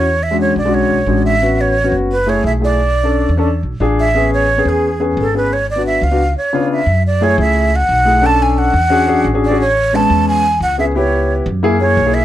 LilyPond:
<<
  \new Staff \with { instrumentName = "Flute" } { \time 4/4 \key a \major \tempo 4 = 176 cis''8 e''8 cis''8 d''8 cis''4. e''8~ | e''8 cis''4 r8 b'8 cis''8 e''8 d''8~ | d''2~ d''8 r4 e''8~ | e''8 cis''4 gis'4 r8 a'8 b'8 |
cis''8 d''8 e''8 f''4 cis''4 e''8~ | \key fis \minor e''8 d''8 cis''8 e''4 fis''4. | a''8 gis''8 fis''2 r8 d''8 | cis''4 a''4 gis''4 fis''8 e''8 |
cis''4 r4. cis''4 e''8 | }
  \new Staff \with { instrumentName = "Grand piano" } { \time 4/4 \key a \major r8. <gis cis' d' fis'>8. r16 <gis cis' d' fis'>8. r8 <gis cis' d' fis'>8. r16 | <b cis' fis'>4 r16 <b cis' fis'>8. r8 <a e' gis'>8. r16 <a e' gis'>8 | r8. <cis' d' a'>8. r16 <cis' d' a'>16 r4 <d' f' gis'>8. r16 | <b cis' gis'>4 r16 <b cis' gis'>8. r8 <b cis' gis'>8. r16 <b cis' gis'>8 |
r8. <b d' fis'>8. r16 <b d' fis'>16 r4 <cis b d' eis'>8. r16 | \key fis \minor r4 <a e' gis'>4. r4 <a e' gis'>16 r16 | <cis' d' a'>4. r8 <cis' d' fis' gis'>16 r16 <cis' d' fis' gis'>8 r16 <cis' d' fis' gis'>16 r16 <cis' d' fis' gis'>16 | r4 <gis b cis'>4. r4 <b cis' gis'>16 r16 |
<b e' g'>4. r8 <ais e' gis'>16 r16 gis'8 r16 <ais e' gis'>16 r8 | }
  \new Staff \with { instrumentName = "Upright bass" } { \clef bass \time 4/4 \key a \major e,4. b,,4 b,,8 a,,4~ | a,,4. fis,,4. b,,4~ | b,,4. e,4 b,,8 a,,4~ | a,,4. e,4. gis,,4~ |
gis,,4. cis,4 r4. | \key fis \minor fis,4. cis,4. b,,4~ | b,,4. e,4. a,,4~ | a,,4. e,4. cis,4~ |
cis,4. fis,4. b,,4 | }
>>